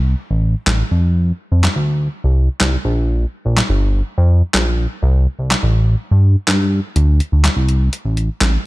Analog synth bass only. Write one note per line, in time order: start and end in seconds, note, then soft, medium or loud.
0.00 0.15 C2 medium
0.31 0.55 A1 medium
0.67 0.83 A1 medium
0.91 1.32 F2 medium
1.52 1.68 F2 medium
1.76 2.09 D2 medium
2.24 2.49 C2 medium
2.60 2.77 C2 medium
2.85 3.26 A#1 loud
3.45 3.62 A#1 medium
3.69 4.02 G1 medium
4.18 4.42 F2 medium
4.54 4.87 A#1 medium
5.02 5.27 C2 loud
5.39 5.55 C2 medium
5.63 5.96 A1 medium
6.11 6.36 G2 medium
6.48 6.80 G2 loud
6.96 7.21 D2 loud
7.32 7.49 D2 medium
7.56 7.89 C2 medium
8.05 8.29 A1 medium
8.41 8.58 A1 medium